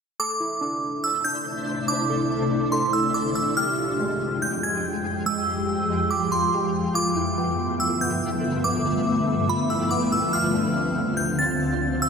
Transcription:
0.19 ambient pad C3 A3 D4 E4, synth texture E4 C5 D5 A5, synth keys A4, synth bell D6
0.40 synth keys E4
0.61 synth keys D4
1.04 synth bell E6
1.24 synth keys D4, synth bell G6
1.88 synth keys D4, synth bell D6
2.10 synth keys A4
2.52 synth keys D4
2.72 synth keys A4, synth bell C6
2.93 synth keys E4, synth bell E6
3.14 synth keys D4, synth bell D6
3.35 synth bell E6
3.57 ambient pad F2 F3 G#3 G5, synth texture F4 G#4 G5, synth keys G4, synth bell F6
3.78 synth keys F4
4.00 synth keys G#3
4.42 synth bell G6
4.63 synth keys G#3, synth bell G#6
5.26 synth keys G#3, synth bell E6
5.47 synth keys G4
5.90 synth keys G#3
6.11 synth keys G4, synth bell D6
6.32 synth keys F4, synth bell C6
6.53 synth keys G#3
6.94 ambient pad G2 D3 A3 B3 E5, synth keys F4, synth texture A4 B4 E5, synth bell D6
7.16 synth keys E4
7.38 synth keys B3
7.80 synth bell E6
8.01 synth keys B3, synth bell G6
8.64 synth keys B3, synth bell D6
8.86 synth keys F4
9.28 synth keys B3
9.49 synth keys F4, synth bell B5
9.70 synth keys E4, synth bell E6
9.91 synth keys B3, synth bell D6
10.12 synth bell E6
10.33 ambient pad D2 C4 F4, synth texture D4 C5 F5, synth keys F4, synth bell F6
10.54 synth keys D4
10.76 synth keys C4
11.17 synth bell G6
11.39 synth keys C4, synth bell A6
12.02 synth keys C4, synth bell E6

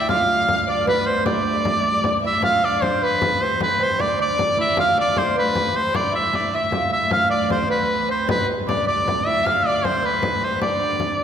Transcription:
Already playing: viola da gamba D2
0.00 fiddle G5
0.08 lute F4, fiddle F5, shawm F5, frame drum
0.29 frame drum
0.48 frame drum
0.67 lute D4, fiddle D5, shawm D5
0.87 lute B3, fiddle B4, shawm B4, frame drum
1.06 shawm C5, fiddle C5, frame drum
1.25 lute D4, shawm D5, fiddle D5, frame drum
1.34 fiddle E5
1.42 fiddle D5
1.49 fiddle E5
1.56 fiddle D5
1.64 fiddle E5, frame drum
1.72 fiddle D5
1.79 fiddle E5
1.85 fiddle D5, frame drum
2.04 frame drum
2.23 lute E4, fiddle E5, shawm E5
2.42 viola da gamba D2, lute F4, fiddle F5, shawm F5, frame drum
2.64 lute D4, shawm D5
2.82 fiddle C5, shawm C5, frame drum
3.02 lute B3, fiddle B4, shawm B4, frame drum
3.22 fiddle B4, frame drum
3.42 lute C4, fiddle C5, shawm C5, frame drum
3.59 lute B3, fiddle B4, shawm B4, frame drum
3.80 lute C4, fiddle C5, shawm C5
3.99 lute D4, fiddle D5, shawm D5, frame drum
4.19 lute D4, fiddle D5, shawm D5, frame drum
4.38 lute D4, frame drum
4.58 lute E4, shawm E5, frame drum
4.77 lute F4, fiddle F5, shawm F5, frame drum
4.98 lute D4, fiddle D5, shawm D5
5.16 fiddle C5, shawm C5, frame drum
5.30 fiddle C5
5.36 lute B3, fiddle B4, shawm B4, frame drum
5.55 frame drum
5.74 lute C4, fiddle C5, shawm C5, frame drum
5.93 lute D4, fiddle D5, shawm D5, frame drum
6.12 lute E4, fiddle E5, shawm E5, frame drum
6.33 shawm D5, frame drum
6.52 lute E4, fiddle E5, shawm E5
6.71 lute F4, frame drum
6.90 lute E4, fiddle E5, shawm E5
7.10 viola da gamba D2, lute F4, fiddle F5, shawm F5, frame drum
7.29 lute D4, shawm D5, fiddle D5
7.49 lute C4, fiddle C5, shawm C5, frame drum
7.69 lute B3, fiddle B4, shawm B4, frame drum
8.08 lute C4, fiddle C5, shawm C5, frame drum
8.29 lute B3, fiddle B4, shawm B4, frame drum
8.67 lute D4, fiddle D5, shawm D5, frame drum
8.86 lute D4, fiddle D5, shawm D5, frame drum
9.06 lute D4, fiddle D5, frame drum
9.25 lute E4, fiddle E5, shawm E5, frame drum
9.45 lute F4, fiddle F5, shawm F5, frame drum
9.65 fiddle D5, shawm D5
9.84 lute C4, fiddle C5, shawm C5, frame drum
10.02 lute B3, fiddle B4, shawm B4, frame drum
10.22 lute B3, frame drum
10.41 lute C4, shawm C5, frame drum
10.61 lute D4, fiddle D5, shawm D5, frame drum
11.00 frame drum

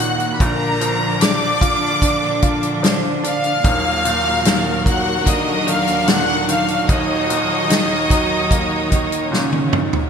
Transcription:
Already playing: grand piano D#1 D#2 A#2 F#3 A#3, string section D#2 D#3 F#4, cello section A#2 A#3, violin section F#5 F#6
0.00 grand piano D#3, closed hi-hat
0.20 closed hi-hat
0.34 violin section B5
0.40 grand piano A#1 A#2, string section A#2 F3 D4, cello section D3 D4, violin section A#4 A#5, kick, closed hi-hat
0.81 grand piano F3, closed hi-hat
1.21 grand piano D4, violin section D5 D6, snare, closed hi-hat
1.61 grand piano F4, kick, closed hi-hat
2.02 grand piano D4, kick, closed hi-hat
2.42 grand piano F4, kick, closed hi-hat
2.63 closed hi-hat
2.83 grand piano F3, snare, closed hi-hat
3.23 grand piano D4, violin section F5 F6, closed hi-hat
3.44 closed hi-hat
3.64 grand piano D#1 D#2, string section D#2 F#3 F#4 A#4, cello section A#2 A#3, kick, closed hi-hat
4.05 grand piano A#2, closed hi-hat
4.45 grand piano D#3, snare, closed hi-hat
4.86 grand piano F#3, violin section F#5 F#6, kick, closed hi-hat
5.26 cello section D3 D4, grand piano A#3, violin section D#5 D#6, kick, closed hi-hat
5.67 grand piano D#3, violin section F5 F6, closed hi-hat
5.87 closed hi-hat
6.08 grand piano A#2, violin section F#5 F#6, snare, closed hi-hat
6.48 grand piano D#3, violin section F5 F6, closed hi-hat
6.68 closed hi-hat
6.88 grand piano D#1 D#2, string section D#2 C#5, cello section D#3 D#4, violin section D#5 D#6, kick, closed hi-hat
7.30 grand piano A#2, closed hi-hat
7.69 grand piano D#3, snare, closed hi-hat
8.10 grand piano F#3, kick, closed hi-hat
8.51 grand piano A#3, kick, closed hi-hat
8.91 grand piano D#3, kick, closed hi-hat
9.12 closed hi-hat
9.32 grand piano A#2, cello section C#3 C#4, snare
9.53 high tom
9.72 grand piano D#3, mid tom
9.93 floor tom

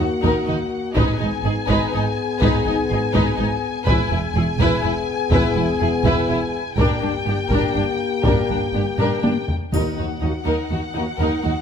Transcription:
Already playing: french horn section A#3 F#4, violin section F#5
0.22 double bass section D#2, cello section D#2, viola section D#4, violin section A#4, taiko
0.47 double bass section D#2, cello section D#2, viola section D#4, violin section D#4
0.95 double bass section G#1, cello section G#2, french horn section B3 G#4, viola section D#4, violin section B4 G#5, taiko
1.19 double bass section G#1, cello section G#2, viola section D#4, violin section D#4
1.44 double bass section G#1, cello section G#2, viola section D#4, violin section G#4
1.68 double bass section G#1, cello section G#2, viola section D#4, violin section B4, taiko
1.93 double bass section G#1, cello section G#2, violin section D#4, viola section D#4
2.41 double bass section G#1, cello section G#2, viola section D#4, violin section B4, taiko
2.65 double bass section G#1, cello section G#2, violin section D#4, viola section D#4
2.89 double bass section G#1, cello section G#2, viola section D#4, violin section G#4
3.13 double bass section G#1, cello section G#2, viola section D#4, violin section B4, taiko
3.37 double bass section G#1, cello section G#2, violin section D#4, viola section D#4
3.86 double bass section E1, cello section E2, french horn section B3 G#4, viola section E4, violin section B4 G#5, taiko
4.10 double bass section E1, cello section E2, violin section E4, viola section E4
4.35 double bass section E1, cello section E2, viola section E4, violin section G#4
4.58 double bass section E1, cello section E2, viola section E4, violin section B4, taiko
4.83 double bass section E1, cello section E2, violin section E4, viola section E4
5.31 double bass section E1, cello section E2, viola section E4, violin section B4, taiko
5.55 double bass section E1, cello section E2, violin section E4, viola section E4
5.80 double bass section E1, cello section E2, viola section E4, violin section G#4
6.04 double bass section E1, cello section E2, viola section E4, violin section B4, taiko
6.29 double bass section E1, cello section E2, violin section E4, viola section E4
6.77 double bass section G1, cello section G2, french horn section A#3 G4, viola section D4, violin section A#4 G5, taiko
7.02 double bass section G1, cello section G2, violin section D4, viola section D4
7.25 double bass section G1, cello section G2, viola section D4, violin section G4
7.49 double bass section G1, cello section G2, viola section D4, violin section A#4, taiko
7.75 double bass section G1, cello section G2, violin section D4, viola section D4
8.23 double bass section G1, cello section G2, viola section D4, violin section A#4, taiko
8.49 double bass section G1, cello section G2, viola section D4, violin section D4
8.74 double bass section G1, cello section G2, viola section D4, violin section G4
8.98 double bass section G1, cello section G2, viola section D4, violin section A#4, taiko low-mid
9.22 double bass section G1, cello section G2, violin section D4, viola section D4, taiko high
9.48 taiko low
9.72 double bass section D#2, cello section D#2, timpani D#3, viola section D#4, violin section A#4 F#5, taiko, triangle
9.96 double bass section D#2, cello section D#2, viola section D#4, violin section F#4
10.20 double bass section D#2, cello section D#2, french horn section A#3 F#4, viola section D#4, violin section D#4
10.45 double bass section D#2, cello section D#2, viola section D#4, violin section A#4
10.70 double bass section D#2, cello section D#2, viola section D#4, violin section F#4
10.94 double bass section D#2, cello section D#2, french horn section A#3 F#4, viola section D#4, violin section D#4
11.19 double bass section D#2, cello section D#2, viola section D#4, violin section A#4
11.43 double bass section D#2, cello section D#2, viola section D#4, violin section F#4

